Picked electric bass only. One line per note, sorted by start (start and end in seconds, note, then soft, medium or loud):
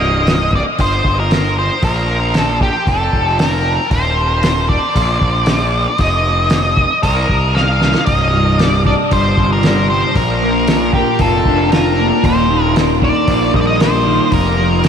0.00 0.61 C1 medium
0.79 1.01 G1 medium
1.05 1.69 G1 medium
1.83 2.69 A#1 medium
2.87 3.09 F1 medium
3.13 3.78 F1 medium
3.91 4.77 D#1 medium
4.96 5.17 A#1 medium
5.21 5.86 A#1 medium
5.99 6.85 F1 medium
7.03 7.25 C2 medium
7.29 7.94 C2 medium
8.08 8.94 C1 medium
9.12 9.33 G1 medium
9.37 10.02 G1 medium
10.15 11.02 A#1 medium
11.20 11.42 F1 medium
11.46 12.11 F1 medium
12.24 13.10 D#1 medium
13.28 13.50 A#1 medium
13.54 14.19 A#1 medium
14.32 14.88 F1 medium